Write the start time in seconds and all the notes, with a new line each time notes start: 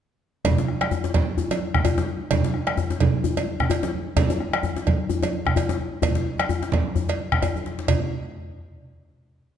0.45 bombo low, cowbell, djembe slap, high conga, djembe bass, low conga
0.58 djembe slap, djembe tone
0.68 bombo rim
0.81 bombo rim, cowbell, djembe slap, high conga
0.91 djembe slap, djembe bass
1.04 djembe slap, djembe tone
1.14 bombo low, cowbell, djembe slap, high conga, low conga
1.38 djembe bass
1.51 cowbell, djembe slap, high conga, djembe tone
1.62 djembe slap
1.74 bombo rim, bombo low, djembe slap, low conga
1.85 cowbell, djembe bass
1.98 bombo rim, djembe slap, djembe tone, high conga
2.08 djembe slap
2.31 bombo low, cowbell, djembe slap, high conga, djembe bass, low conga
2.44 djembe slap, djembe tone
2.54 bombo rim
2.67 bombo rim, cowbell, djembe slap, high conga
2.77 djembe slap, djembe bass
2.90 djembe slap, djembe tone
3.00 bombo low, cowbell, djembe slap, high conga, low conga
3.24 djembe bass
3.37 cowbell, djembe slap, high conga, djembe tone
3.47 djembe slap
3.60 bombo rim, bombo low, djembe slap, low conga
3.70 cowbell, djembe bass
3.83 bombo rim, djembe slap, djembe tone, high conga
3.93 djembe slap
4.16 bombo low, cowbell, djembe slap, high conga, djembe bass, low conga
4.30 djembe slap, djembe tone
4.40 bombo rim
4.53 bombo rim, cowbell, djembe slap, high conga
4.63 djembe slap, djembe bass
4.76 djembe slap, djembe tone
4.86 bombo low, cowbell, djembe slap, high conga
5.09 djembe bass
5.23 cowbell, djembe slap, djembe tone, high conga
5.33 djembe slap
5.45 bombo rim, bombo low, djembe slap, low conga
5.56 cowbell, djembe bass
5.69 bombo rim, djembe slap, high conga, djembe tone
5.79 djembe slap
6.02 bombo low, cowbell, high conga, djembe bass, low conga
6.15 djembe slap, high conga, djembe tone
6.26 djembe slap
6.38 bombo rim, cowbell, djembe slap, high conga
6.49 djembe bass
6.62 bombo rim, djembe slap, high conga, djembe tone
6.72 bombo low, cowbell, high conga, low conga
6.86 high conga
6.96 djembe slap, high conga, djembe bass
7.09 cowbell, djembe slap, high conga
7.19 high conga
7.32 bombo rim, bombo low, low conga
7.42 bombo rim, cowbell, djembe slap, high conga, djembe bass
7.56 high conga, djembe bass
7.66 djembe slap
7.79 djembe slap, high conga
7.88 bombo low, cowbell, djembe bass, low conga